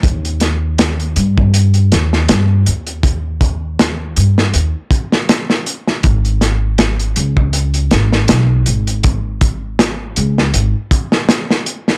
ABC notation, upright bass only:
X:1
M:4/4
L:1/8
Q:"Swing 16ths" 1/4=80
K:D#phr
V:1 name="Upright bass" clef=bass
D,,3 =G,,2 D,, G,, D,,- | D,,3 =G,, D,, z3 | G,,,3 C,,2 G,,, B,,, G,,,- | G,,,3 C,, G,,, z3 |]